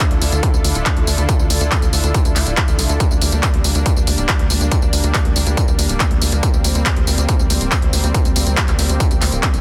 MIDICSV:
0, 0, Header, 1, 4, 480
1, 0, Start_track
1, 0, Tempo, 428571
1, 1441, Time_signature, 4, 2, 24, 8
1, 10762, End_track
2, 0, Start_track
2, 0, Title_t, "Analog synth pad"
2, 0, Program_c, 0, 89
2, 0, Note_on_c, 0, 50, 82
2, 0, Note_on_c, 0, 62, 73
2, 0, Note_on_c, 0, 64, 72
2, 0, Note_on_c, 0, 65, 72
2, 0, Note_on_c, 0, 69, 90
2, 3317, Note_off_c, 0, 50, 0
2, 3317, Note_off_c, 0, 62, 0
2, 3317, Note_off_c, 0, 64, 0
2, 3317, Note_off_c, 0, 65, 0
2, 3317, Note_off_c, 0, 69, 0
2, 3362, Note_on_c, 0, 62, 90
2, 3363, Note_on_c, 0, 55, 82
2, 3363, Note_on_c, 0, 58, 73
2, 7164, Note_off_c, 0, 62, 0
2, 7202, Note_on_c, 0, 60, 90
2, 10762, Note_off_c, 0, 55, 0
2, 10762, Note_off_c, 0, 58, 0
2, 10762, Note_off_c, 0, 60, 0
2, 10762, End_track
3, 0, Start_track
3, 0, Title_t, "Analog synth bass"
3, 0, Program_c, 1, 38
3, 121, Note_on_c, 1, 38, 85
3, 220, Note_off_c, 1, 38, 0
3, 241, Note_on_c, 1, 38, 102
3, 341, Note_off_c, 1, 38, 0
3, 361, Note_on_c, 1, 38, 97
3, 461, Note_off_c, 1, 38, 0
3, 601, Note_on_c, 1, 38, 92
3, 701, Note_off_c, 1, 38, 0
3, 721, Note_on_c, 1, 38, 97
3, 821, Note_off_c, 1, 38, 0
3, 841, Note_on_c, 1, 26, 89
3, 941, Note_off_c, 1, 26, 0
3, 1081, Note_on_c, 1, 38, 86
3, 1181, Note_off_c, 1, 38, 0
3, 1202, Note_on_c, 1, 38, 101
3, 1301, Note_off_c, 1, 38, 0
3, 1321, Note_on_c, 1, 38, 89
3, 1421, Note_off_c, 1, 38, 0
3, 1561, Note_on_c, 1, 38, 88
3, 1661, Note_off_c, 1, 38, 0
3, 1681, Note_on_c, 1, 38, 105
3, 1781, Note_off_c, 1, 38, 0
3, 1801, Note_on_c, 1, 38, 90
3, 1901, Note_off_c, 1, 38, 0
3, 2041, Note_on_c, 1, 38, 87
3, 2141, Note_off_c, 1, 38, 0
3, 2161, Note_on_c, 1, 38, 97
3, 2261, Note_off_c, 1, 38, 0
3, 2281, Note_on_c, 1, 38, 94
3, 2381, Note_off_c, 1, 38, 0
3, 2521, Note_on_c, 1, 38, 94
3, 2621, Note_off_c, 1, 38, 0
3, 2642, Note_on_c, 1, 38, 101
3, 2741, Note_off_c, 1, 38, 0
3, 2762, Note_on_c, 1, 26, 91
3, 2861, Note_off_c, 1, 26, 0
3, 3002, Note_on_c, 1, 38, 85
3, 3101, Note_off_c, 1, 38, 0
3, 3122, Note_on_c, 1, 36, 104
3, 3221, Note_off_c, 1, 36, 0
3, 3242, Note_on_c, 1, 38, 88
3, 3341, Note_off_c, 1, 38, 0
3, 3482, Note_on_c, 1, 38, 90
3, 3581, Note_off_c, 1, 38, 0
3, 3601, Note_on_c, 1, 38, 103
3, 3701, Note_off_c, 1, 38, 0
3, 3722, Note_on_c, 1, 38, 91
3, 3821, Note_off_c, 1, 38, 0
3, 3962, Note_on_c, 1, 38, 85
3, 4061, Note_off_c, 1, 38, 0
3, 4081, Note_on_c, 1, 38, 99
3, 4181, Note_off_c, 1, 38, 0
3, 4201, Note_on_c, 1, 38, 96
3, 4301, Note_off_c, 1, 38, 0
3, 4441, Note_on_c, 1, 38, 91
3, 4541, Note_off_c, 1, 38, 0
3, 4561, Note_on_c, 1, 38, 99
3, 4661, Note_off_c, 1, 38, 0
3, 4681, Note_on_c, 1, 26, 96
3, 4781, Note_off_c, 1, 26, 0
3, 4921, Note_on_c, 1, 38, 88
3, 5021, Note_off_c, 1, 38, 0
3, 5041, Note_on_c, 1, 38, 101
3, 5141, Note_off_c, 1, 38, 0
3, 5161, Note_on_c, 1, 38, 90
3, 5261, Note_off_c, 1, 38, 0
3, 5401, Note_on_c, 1, 38, 89
3, 5501, Note_off_c, 1, 38, 0
3, 5521, Note_on_c, 1, 38, 99
3, 5621, Note_off_c, 1, 38, 0
3, 5641, Note_on_c, 1, 38, 92
3, 5741, Note_off_c, 1, 38, 0
3, 5881, Note_on_c, 1, 38, 87
3, 5981, Note_off_c, 1, 38, 0
3, 6001, Note_on_c, 1, 38, 100
3, 6101, Note_off_c, 1, 38, 0
3, 6121, Note_on_c, 1, 38, 95
3, 6221, Note_off_c, 1, 38, 0
3, 6361, Note_on_c, 1, 38, 93
3, 6461, Note_off_c, 1, 38, 0
3, 6481, Note_on_c, 1, 38, 99
3, 6581, Note_off_c, 1, 38, 0
3, 6601, Note_on_c, 1, 26, 96
3, 6701, Note_off_c, 1, 26, 0
3, 6840, Note_on_c, 1, 38, 87
3, 6940, Note_off_c, 1, 38, 0
3, 6960, Note_on_c, 1, 38, 98
3, 7060, Note_off_c, 1, 38, 0
3, 7081, Note_on_c, 1, 38, 93
3, 7181, Note_off_c, 1, 38, 0
3, 7321, Note_on_c, 1, 38, 87
3, 7421, Note_off_c, 1, 38, 0
3, 7441, Note_on_c, 1, 38, 103
3, 7541, Note_off_c, 1, 38, 0
3, 7561, Note_on_c, 1, 38, 90
3, 7661, Note_off_c, 1, 38, 0
3, 7801, Note_on_c, 1, 38, 86
3, 7901, Note_off_c, 1, 38, 0
3, 7921, Note_on_c, 1, 38, 101
3, 8021, Note_off_c, 1, 38, 0
3, 8041, Note_on_c, 1, 38, 96
3, 8141, Note_off_c, 1, 38, 0
3, 8281, Note_on_c, 1, 38, 89
3, 8381, Note_off_c, 1, 38, 0
3, 8401, Note_on_c, 1, 38, 97
3, 8501, Note_off_c, 1, 38, 0
3, 8521, Note_on_c, 1, 26, 91
3, 8621, Note_off_c, 1, 26, 0
3, 8761, Note_on_c, 1, 38, 87
3, 8861, Note_off_c, 1, 38, 0
3, 8881, Note_on_c, 1, 38, 100
3, 8981, Note_off_c, 1, 38, 0
3, 9002, Note_on_c, 1, 38, 93
3, 9101, Note_off_c, 1, 38, 0
3, 9241, Note_on_c, 1, 38, 87
3, 9341, Note_off_c, 1, 38, 0
3, 9361, Note_on_c, 1, 38, 99
3, 9461, Note_off_c, 1, 38, 0
3, 9481, Note_on_c, 1, 38, 91
3, 9581, Note_off_c, 1, 38, 0
3, 9722, Note_on_c, 1, 38, 89
3, 9821, Note_off_c, 1, 38, 0
3, 9842, Note_on_c, 1, 38, 101
3, 9941, Note_off_c, 1, 38, 0
3, 9962, Note_on_c, 1, 38, 94
3, 10061, Note_off_c, 1, 38, 0
3, 10202, Note_on_c, 1, 38, 87
3, 10301, Note_off_c, 1, 38, 0
3, 10322, Note_on_c, 1, 38, 98
3, 10421, Note_off_c, 1, 38, 0
3, 10442, Note_on_c, 1, 26, 97
3, 10541, Note_off_c, 1, 26, 0
3, 10682, Note_on_c, 1, 36, 83
3, 10762, Note_off_c, 1, 36, 0
3, 10762, End_track
4, 0, Start_track
4, 0, Title_t, "Drums"
4, 1, Note_on_c, 9, 36, 124
4, 2, Note_on_c, 9, 39, 117
4, 2, Note_on_c, 9, 42, 75
4, 2, Note_on_c, 9, 54, 40
4, 113, Note_off_c, 9, 36, 0
4, 114, Note_off_c, 9, 39, 0
4, 114, Note_off_c, 9, 42, 0
4, 114, Note_off_c, 9, 54, 0
4, 122, Note_on_c, 9, 42, 34
4, 234, Note_off_c, 9, 42, 0
4, 241, Note_on_c, 9, 46, 97
4, 241, Note_on_c, 9, 54, 72
4, 353, Note_off_c, 9, 46, 0
4, 353, Note_off_c, 9, 54, 0
4, 362, Note_on_c, 9, 42, 52
4, 362, Note_on_c, 9, 54, 33
4, 474, Note_off_c, 9, 42, 0
4, 474, Note_off_c, 9, 54, 0
4, 481, Note_on_c, 9, 36, 125
4, 482, Note_on_c, 9, 42, 79
4, 482, Note_on_c, 9, 54, 41
4, 593, Note_off_c, 9, 36, 0
4, 594, Note_off_c, 9, 42, 0
4, 594, Note_off_c, 9, 54, 0
4, 602, Note_on_c, 9, 54, 29
4, 714, Note_off_c, 9, 54, 0
4, 722, Note_on_c, 9, 46, 106
4, 722, Note_on_c, 9, 54, 69
4, 834, Note_off_c, 9, 46, 0
4, 834, Note_off_c, 9, 54, 0
4, 842, Note_on_c, 9, 42, 49
4, 842, Note_on_c, 9, 54, 32
4, 954, Note_off_c, 9, 42, 0
4, 954, Note_off_c, 9, 54, 0
4, 961, Note_on_c, 9, 36, 127
4, 962, Note_on_c, 9, 39, 126
4, 962, Note_on_c, 9, 42, 79
4, 962, Note_on_c, 9, 54, 41
4, 1073, Note_off_c, 9, 36, 0
4, 1074, Note_off_c, 9, 39, 0
4, 1074, Note_off_c, 9, 42, 0
4, 1074, Note_off_c, 9, 54, 0
4, 1082, Note_on_c, 9, 42, 36
4, 1194, Note_off_c, 9, 42, 0
4, 1202, Note_on_c, 9, 46, 96
4, 1202, Note_on_c, 9, 54, 74
4, 1314, Note_off_c, 9, 46, 0
4, 1314, Note_off_c, 9, 54, 0
4, 1322, Note_on_c, 9, 42, 51
4, 1322, Note_on_c, 9, 54, 31
4, 1434, Note_off_c, 9, 42, 0
4, 1434, Note_off_c, 9, 54, 0
4, 1441, Note_on_c, 9, 36, 124
4, 1442, Note_on_c, 9, 42, 79
4, 1442, Note_on_c, 9, 54, 46
4, 1553, Note_off_c, 9, 36, 0
4, 1554, Note_off_c, 9, 42, 0
4, 1554, Note_off_c, 9, 54, 0
4, 1562, Note_on_c, 9, 54, 29
4, 1674, Note_off_c, 9, 54, 0
4, 1681, Note_on_c, 9, 46, 113
4, 1681, Note_on_c, 9, 54, 81
4, 1793, Note_off_c, 9, 46, 0
4, 1793, Note_off_c, 9, 54, 0
4, 1802, Note_on_c, 9, 42, 49
4, 1802, Note_on_c, 9, 54, 33
4, 1914, Note_off_c, 9, 42, 0
4, 1914, Note_off_c, 9, 54, 0
4, 1921, Note_on_c, 9, 39, 119
4, 1921, Note_on_c, 9, 42, 74
4, 1921, Note_on_c, 9, 54, 43
4, 1922, Note_on_c, 9, 36, 120
4, 2033, Note_off_c, 9, 39, 0
4, 2033, Note_off_c, 9, 42, 0
4, 2033, Note_off_c, 9, 54, 0
4, 2034, Note_off_c, 9, 36, 0
4, 2041, Note_on_c, 9, 42, 36
4, 2041, Note_on_c, 9, 54, 30
4, 2153, Note_off_c, 9, 42, 0
4, 2153, Note_off_c, 9, 54, 0
4, 2161, Note_on_c, 9, 46, 93
4, 2161, Note_on_c, 9, 54, 72
4, 2273, Note_off_c, 9, 46, 0
4, 2273, Note_off_c, 9, 54, 0
4, 2281, Note_on_c, 9, 42, 50
4, 2281, Note_on_c, 9, 54, 33
4, 2393, Note_off_c, 9, 42, 0
4, 2393, Note_off_c, 9, 54, 0
4, 2402, Note_on_c, 9, 36, 119
4, 2402, Note_on_c, 9, 42, 76
4, 2402, Note_on_c, 9, 54, 43
4, 2514, Note_off_c, 9, 36, 0
4, 2514, Note_off_c, 9, 42, 0
4, 2514, Note_off_c, 9, 54, 0
4, 2521, Note_on_c, 9, 42, 36
4, 2521, Note_on_c, 9, 54, 31
4, 2633, Note_off_c, 9, 42, 0
4, 2633, Note_off_c, 9, 54, 0
4, 2641, Note_on_c, 9, 39, 35
4, 2641, Note_on_c, 9, 46, 102
4, 2641, Note_on_c, 9, 54, 73
4, 2753, Note_off_c, 9, 39, 0
4, 2753, Note_off_c, 9, 46, 0
4, 2753, Note_off_c, 9, 54, 0
4, 2761, Note_on_c, 9, 42, 48
4, 2761, Note_on_c, 9, 54, 33
4, 2873, Note_off_c, 9, 42, 0
4, 2873, Note_off_c, 9, 54, 0
4, 2881, Note_on_c, 9, 39, 119
4, 2881, Note_on_c, 9, 42, 72
4, 2881, Note_on_c, 9, 54, 43
4, 2882, Note_on_c, 9, 36, 127
4, 2993, Note_off_c, 9, 39, 0
4, 2993, Note_off_c, 9, 42, 0
4, 2993, Note_off_c, 9, 54, 0
4, 2994, Note_off_c, 9, 36, 0
4, 3001, Note_on_c, 9, 42, 35
4, 3001, Note_on_c, 9, 54, 30
4, 3113, Note_off_c, 9, 42, 0
4, 3113, Note_off_c, 9, 54, 0
4, 3121, Note_on_c, 9, 46, 96
4, 3121, Note_on_c, 9, 54, 78
4, 3233, Note_off_c, 9, 46, 0
4, 3233, Note_off_c, 9, 54, 0
4, 3241, Note_on_c, 9, 42, 51
4, 3241, Note_on_c, 9, 54, 33
4, 3353, Note_off_c, 9, 42, 0
4, 3353, Note_off_c, 9, 54, 0
4, 3361, Note_on_c, 9, 42, 81
4, 3361, Note_on_c, 9, 54, 48
4, 3362, Note_on_c, 9, 36, 121
4, 3473, Note_off_c, 9, 42, 0
4, 3473, Note_off_c, 9, 54, 0
4, 3474, Note_off_c, 9, 36, 0
4, 3481, Note_on_c, 9, 54, 30
4, 3593, Note_off_c, 9, 54, 0
4, 3601, Note_on_c, 9, 46, 113
4, 3601, Note_on_c, 9, 54, 82
4, 3713, Note_off_c, 9, 46, 0
4, 3713, Note_off_c, 9, 54, 0
4, 3721, Note_on_c, 9, 54, 34
4, 3833, Note_off_c, 9, 54, 0
4, 3841, Note_on_c, 9, 36, 124
4, 3841, Note_on_c, 9, 39, 111
4, 3841, Note_on_c, 9, 42, 73
4, 3841, Note_on_c, 9, 54, 45
4, 3953, Note_off_c, 9, 36, 0
4, 3953, Note_off_c, 9, 39, 0
4, 3953, Note_off_c, 9, 42, 0
4, 3953, Note_off_c, 9, 54, 0
4, 3961, Note_on_c, 9, 42, 36
4, 4073, Note_off_c, 9, 42, 0
4, 4080, Note_on_c, 9, 46, 91
4, 4080, Note_on_c, 9, 54, 77
4, 4192, Note_off_c, 9, 46, 0
4, 4192, Note_off_c, 9, 54, 0
4, 4200, Note_on_c, 9, 42, 52
4, 4200, Note_on_c, 9, 54, 34
4, 4312, Note_off_c, 9, 42, 0
4, 4312, Note_off_c, 9, 54, 0
4, 4321, Note_on_c, 9, 36, 112
4, 4321, Note_on_c, 9, 42, 80
4, 4321, Note_on_c, 9, 54, 45
4, 4433, Note_off_c, 9, 36, 0
4, 4433, Note_off_c, 9, 42, 0
4, 4433, Note_off_c, 9, 54, 0
4, 4441, Note_on_c, 9, 54, 30
4, 4553, Note_off_c, 9, 54, 0
4, 4561, Note_on_c, 9, 46, 104
4, 4561, Note_on_c, 9, 54, 74
4, 4673, Note_off_c, 9, 46, 0
4, 4673, Note_off_c, 9, 54, 0
4, 4681, Note_on_c, 9, 42, 47
4, 4681, Note_on_c, 9, 54, 33
4, 4793, Note_off_c, 9, 42, 0
4, 4793, Note_off_c, 9, 54, 0
4, 4801, Note_on_c, 9, 36, 123
4, 4801, Note_on_c, 9, 39, 119
4, 4801, Note_on_c, 9, 42, 76
4, 4801, Note_on_c, 9, 54, 46
4, 4913, Note_off_c, 9, 36, 0
4, 4913, Note_off_c, 9, 39, 0
4, 4913, Note_off_c, 9, 42, 0
4, 4913, Note_off_c, 9, 54, 0
4, 4921, Note_on_c, 9, 42, 36
4, 5033, Note_off_c, 9, 42, 0
4, 5041, Note_on_c, 9, 46, 95
4, 5041, Note_on_c, 9, 54, 81
4, 5153, Note_off_c, 9, 46, 0
4, 5153, Note_off_c, 9, 54, 0
4, 5161, Note_on_c, 9, 42, 50
4, 5161, Note_on_c, 9, 54, 33
4, 5273, Note_off_c, 9, 42, 0
4, 5273, Note_off_c, 9, 54, 0
4, 5281, Note_on_c, 9, 36, 117
4, 5281, Note_on_c, 9, 42, 82
4, 5281, Note_on_c, 9, 54, 46
4, 5393, Note_off_c, 9, 36, 0
4, 5393, Note_off_c, 9, 42, 0
4, 5393, Note_off_c, 9, 54, 0
4, 5401, Note_on_c, 9, 54, 31
4, 5513, Note_off_c, 9, 54, 0
4, 5521, Note_on_c, 9, 46, 106
4, 5521, Note_on_c, 9, 54, 79
4, 5633, Note_off_c, 9, 46, 0
4, 5633, Note_off_c, 9, 54, 0
4, 5641, Note_on_c, 9, 42, 51
4, 5641, Note_on_c, 9, 54, 34
4, 5753, Note_off_c, 9, 42, 0
4, 5753, Note_off_c, 9, 54, 0
4, 5762, Note_on_c, 9, 36, 121
4, 5762, Note_on_c, 9, 39, 108
4, 5762, Note_on_c, 9, 42, 77
4, 5762, Note_on_c, 9, 54, 44
4, 5874, Note_off_c, 9, 36, 0
4, 5874, Note_off_c, 9, 39, 0
4, 5874, Note_off_c, 9, 42, 0
4, 5874, Note_off_c, 9, 54, 0
4, 5881, Note_on_c, 9, 42, 37
4, 5993, Note_off_c, 9, 42, 0
4, 6002, Note_on_c, 9, 46, 90
4, 6002, Note_on_c, 9, 54, 75
4, 6114, Note_off_c, 9, 46, 0
4, 6114, Note_off_c, 9, 54, 0
4, 6122, Note_on_c, 9, 42, 51
4, 6122, Note_on_c, 9, 54, 34
4, 6234, Note_off_c, 9, 42, 0
4, 6234, Note_off_c, 9, 54, 0
4, 6242, Note_on_c, 9, 36, 111
4, 6242, Note_on_c, 9, 42, 78
4, 6242, Note_on_c, 9, 54, 46
4, 6354, Note_off_c, 9, 36, 0
4, 6354, Note_off_c, 9, 42, 0
4, 6354, Note_off_c, 9, 54, 0
4, 6361, Note_on_c, 9, 54, 32
4, 6473, Note_off_c, 9, 54, 0
4, 6482, Note_on_c, 9, 46, 97
4, 6482, Note_on_c, 9, 54, 75
4, 6594, Note_off_c, 9, 46, 0
4, 6594, Note_off_c, 9, 54, 0
4, 6601, Note_on_c, 9, 42, 52
4, 6601, Note_on_c, 9, 54, 32
4, 6713, Note_off_c, 9, 42, 0
4, 6713, Note_off_c, 9, 54, 0
4, 6721, Note_on_c, 9, 39, 118
4, 6721, Note_on_c, 9, 42, 80
4, 6721, Note_on_c, 9, 54, 46
4, 6722, Note_on_c, 9, 36, 120
4, 6833, Note_off_c, 9, 39, 0
4, 6833, Note_off_c, 9, 42, 0
4, 6833, Note_off_c, 9, 54, 0
4, 6834, Note_off_c, 9, 36, 0
4, 6842, Note_on_c, 9, 42, 37
4, 6954, Note_off_c, 9, 42, 0
4, 6962, Note_on_c, 9, 46, 95
4, 6962, Note_on_c, 9, 54, 79
4, 7074, Note_off_c, 9, 46, 0
4, 7074, Note_off_c, 9, 54, 0
4, 7082, Note_on_c, 9, 42, 52
4, 7082, Note_on_c, 9, 54, 34
4, 7194, Note_off_c, 9, 42, 0
4, 7194, Note_off_c, 9, 54, 0
4, 7201, Note_on_c, 9, 42, 87
4, 7201, Note_on_c, 9, 54, 47
4, 7202, Note_on_c, 9, 36, 113
4, 7313, Note_off_c, 9, 42, 0
4, 7313, Note_off_c, 9, 54, 0
4, 7314, Note_off_c, 9, 36, 0
4, 7321, Note_on_c, 9, 54, 30
4, 7433, Note_off_c, 9, 54, 0
4, 7441, Note_on_c, 9, 46, 105
4, 7441, Note_on_c, 9, 54, 81
4, 7553, Note_off_c, 9, 46, 0
4, 7553, Note_off_c, 9, 54, 0
4, 7561, Note_on_c, 9, 42, 56
4, 7561, Note_on_c, 9, 54, 32
4, 7673, Note_off_c, 9, 42, 0
4, 7673, Note_off_c, 9, 54, 0
4, 7681, Note_on_c, 9, 39, 111
4, 7681, Note_on_c, 9, 42, 84
4, 7681, Note_on_c, 9, 54, 44
4, 7682, Note_on_c, 9, 36, 114
4, 7793, Note_off_c, 9, 39, 0
4, 7793, Note_off_c, 9, 42, 0
4, 7793, Note_off_c, 9, 54, 0
4, 7794, Note_off_c, 9, 36, 0
4, 7801, Note_on_c, 9, 42, 38
4, 7913, Note_off_c, 9, 42, 0
4, 7921, Note_on_c, 9, 46, 86
4, 7921, Note_on_c, 9, 54, 73
4, 8033, Note_off_c, 9, 46, 0
4, 8033, Note_off_c, 9, 54, 0
4, 8041, Note_on_c, 9, 42, 58
4, 8041, Note_on_c, 9, 54, 35
4, 8153, Note_off_c, 9, 42, 0
4, 8153, Note_off_c, 9, 54, 0
4, 8160, Note_on_c, 9, 42, 86
4, 8160, Note_on_c, 9, 54, 44
4, 8162, Note_on_c, 9, 36, 114
4, 8272, Note_off_c, 9, 42, 0
4, 8272, Note_off_c, 9, 54, 0
4, 8274, Note_off_c, 9, 36, 0
4, 8281, Note_on_c, 9, 54, 31
4, 8393, Note_off_c, 9, 54, 0
4, 8401, Note_on_c, 9, 46, 98
4, 8401, Note_on_c, 9, 54, 75
4, 8513, Note_off_c, 9, 46, 0
4, 8513, Note_off_c, 9, 54, 0
4, 8522, Note_on_c, 9, 42, 53
4, 8522, Note_on_c, 9, 54, 32
4, 8634, Note_off_c, 9, 42, 0
4, 8634, Note_off_c, 9, 54, 0
4, 8642, Note_on_c, 9, 36, 119
4, 8642, Note_on_c, 9, 39, 116
4, 8642, Note_on_c, 9, 42, 86
4, 8642, Note_on_c, 9, 54, 44
4, 8754, Note_off_c, 9, 36, 0
4, 8754, Note_off_c, 9, 39, 0
4, 8754, Note_off_c, 9, 42, 0
4, 8754, Note_off_c, 9, 54, 0
4, 8762, Note_on_c, 9, 42, 39
4, 8874, Note_off_c, 9, 42, 0
4, 8882, Note_on_c, 9, 46, 89
4, 8882, Note_on_c, 9, 54, 77
4, 8994, Note_off_c, 9, 46, 0
4, 8994, Note_off_c, 9, 54, 0
4, 9002, Note_on_c, 9, 42, 54
4, 9002, Note_on_c, 9, 54, 34
4, 9114, Note_off_c, 9, 42, 0
4, 9114, Note_off_c, 9, 54, 0
4, 9122, Note_on_c, 9, 36, 111
4, 9122, Note_on_c, 9, 42, 86
4, 9122, Note_on_c, 9, 54, 44
4, 9234, Note_off_c, 9, 36, 0
4, 9234, Note_off_c, 9, 42, 0
4, 9234, Note_off_c, 9, 54, 0
4, 9242, Note_on_c, 9, 42, 39
4, 9242, Note_on_c, 9, 54, 28
4, 9354, Note_off_c, 9, 42, 0
4, 9354, Note_off_c, 9, 54, 0
4, 9362, Note_on_c, 9, 46, 104
4, 9362, Note_on_c, 9, 54, 77
4, 9474, Note_off_c, 9, 46, 0
4, 9474, Note_off_c, 9, 54, 0
4, 9482, Note_on_c, 9, 42, 57
4, 9482, Note_on_c, 9, 54, 32
4, 9594, Note_off_c, 9, 42, 0
4, 9594, Note_off_c, 9, 54, 0
4, 9602, Note_on_c, 9, 36, 110
4, 9602, Note_on_c, 9, 39, 118
4, 9602, Note_on_c, 9, 42, 82
4, 9602, Note_on_c, 9, 54, 42
4, 9714, Note_off_c, 9, 36, 0
4, 9714, Note_off_c, 9, 39, 0
4, 9714, Note_off_c, 9, 42, 0
4, 9714, Note_off_c, 9, 54, 0
4, 9722, Note_on_c, 9, 39, 38
4, 9722, Note_on_c, 9, 42, 40
4, 9722, Note_on_c, 9, 54, 29
4, 9834, Note_off_c, 9, 39, 0
4, 9834, Note_off_c, 9, 42, 0
4, 9834, Note_off_c, 9, 54, 0
4, 9842, Note_on_c, 9, 46, 89
4, 9842, Note_on_c, 9, 54, 70
4, 9954, Note_off_c, 9, 46, 0
4, 9954, Note_off_c, 9, 54, 0
4, 9962, Note_on_c, 9, 42, 56
4, 9962, Note_on_c, 9, 54, 34
4, 10074, Note_off_c, 9, 42, 0
4, 10074, Note_off_c, 9, 54, 0
4, 10082, Note_on_c, 9, 36, 114
4, 10082, Note_on_c, 9, 42, 86
4, 10082, Note_on_c, 9, 54, 43
4, 10194, Note_off_c, 9, 36, 0
4, 10194, Note_off_c, 9, 42, 0
4, 10194, Note_off_c, 9, 54, 0
4, 10202, Note_on_c, 9, 42, 38
4, 10202, Note_on_c, 9, 54, 28
4, 10314, Note_off_c, 9, 42, 0
4, 10314, Note_off_c, 9, 54, 0
4, 10321, Note_on_c, 9, 39, 38
4, 10321, Note_on_c, 9, 46, 99
4, 10321, Note_on_c, 9, 54, 68
4, 10433, Note_off_c, 9, 39, 0
4, 10433, Note_off_c, 9, 46, 0
4, 10433, Note_off_c, 9, 54, 0
4, 10442, Note_on_c, 9, 42, 52
4, 10442, Note_on_c, 9, 54, 31
4, 10554, Note_off_c, 9, 42, 0
4, 10554, Note_off_c, 9, 54, 0
4, 10562, Note_on_c, 9, 36, 122
4, 10562, Note_on_c, 9, 39, 127
4, 10562, Note_on_c, 9, 42, 82
4, 10562, Note_on_c, 9, 54, 43
4, 10674, Note_off_c, 9, 36, 0
4, 10674, Note_off_c, 9, 39, 0
4, 10674, Note_off_c, 9, 42, 0
4, 10674, Note_off_c, 9, 54, 0
4, 10682, Note_on_c, 9, 42, 38
4, 10682, Note_on_c, 9, 54, 29
4, 10762, Note_off_c, 9, 42, 0
4, 10762, Note_off_c, 9, 54, 0
4, 10762, End_track
0, 0, End_of_file